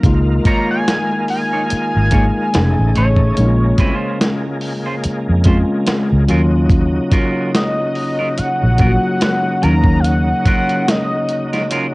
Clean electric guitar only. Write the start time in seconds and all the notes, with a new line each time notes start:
0.45 A#3 D#4 F4 C#5
1.53 A#3 D#4 F4 C#5
2.12 A#3 D#4 F4 C#5
2.95 A3 D#4 G#4 C#5
3.79 G3 C4 E4 B4
3.95 G#3 C#4 F4 C5
4.86 G#3 C#4 F4 C5
5.46 G#3 C#4 F4 C5
6.29 F#3 C#4 F4 A#4
7.11 F#3 C#4 F4 A#4
8.19 F#3 C#4 F4 A#4
8.79 F#3 C#4 F4 A#4
9.62 F#3 C#4 F4 A#4
10.46 F#3 C#4 F4 A#4
11.53 F#3 C#4 F4 A#4
11.71 F#3 C#4 F4 A#4